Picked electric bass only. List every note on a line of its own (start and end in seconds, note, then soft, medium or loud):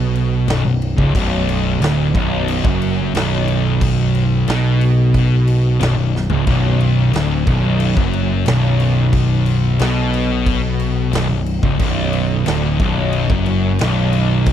0.00 0.44 B1 medium
0.48 0.63 B0 loud
0.65 0.96 B0 medium
0.99 1.14 C#1 loud
1.15 1.77 B0 medium
1.80 2.12 D1 medium
2.15 2.61 B0 loud
2.65 3.11 F#1 medium
3.14 4.43 B0 loud
4.48 5.77 B1 loud
5.81 5.96 B0 medium
5.98 6.29 B0 medium
6.31 6.46 C#1 medium
6.47 7.10 B0 loud
7.14 7.45 D1 medium
7.47 7.94 B0 medium
7.97 8.44 F#1 medium
8.48 9.77 B0 loud
9.80 11.10 B1 loud
11.13 11.29 B0 loud
11.30 11.61 B0 medium
11.63 11.79 C#1 loud
11.80 12.43 B0 loud
12.47 12.78 D1 loud
12.80 13.26 B0 loud
13.30 13.77 F#1 loud
13.81 14.53 B0 loud